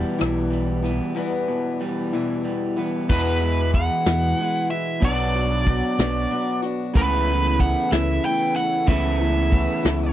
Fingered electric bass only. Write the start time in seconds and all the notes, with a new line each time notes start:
0.21 B1
3.10 E2
4.06 E2
5.02 B1
5.99 B1
6.96 C#2
7.92 C#2
8.88 C#2
9.85 C#2